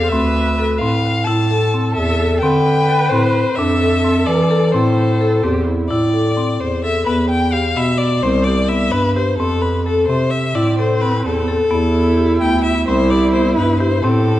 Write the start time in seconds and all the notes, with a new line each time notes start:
Already playing: F5
0.04 C5
0.09 D2 C4 B4 E5
0.59 A4
0.78 A2 C4 F5
1.24 A2 E4 A4 A5
1.51 A4
1.74 C4
1.94 E2 E5
2.20 A4
2.40 D3 C4 B4 G5
2.89 A4
3.09 A2 C4 C5
3.55 F2 D4 A4 E5
3.82 A4
4.04 C4
4.26 E3 D5
4.51 A4
4.72 A2 C4 A4 C5
5.21 A4
5.43 E2 C4 G4
5.66 E4
5.89 A2 E4 D5
6.14 A4
6.37 C4
6.60 E2 C5
6.84 A4 E5
7.06 E2 B3 B4
7.29 G5
7.52 G4 F5
7.76 B2 B3 E5
7.98 D5
8.22 C2 C4 C5
8.44 G4 D5
8.68 B3 E5
8.92 G2 B4
9.16 G4 C5
9.38 F2 C4 A4
9.62 B4
9.86 A4
10.07 C3 C4 C5
10.30 E5
10.53 A2 C4 E4 D5
10.79 A4 C5
11.02 C4 B4
11.24 E2 A4
11.48 A4
11.70 E2 B3 E4
12.17 G4
12.40 D2 B3 G5
12.64 E5
12.87 C2 C4 E4 C5
13.10 G4 D5
13.32 B3 C5
13.57 G2 B4
13.80 G4 C5
14.03 A2 C4 A4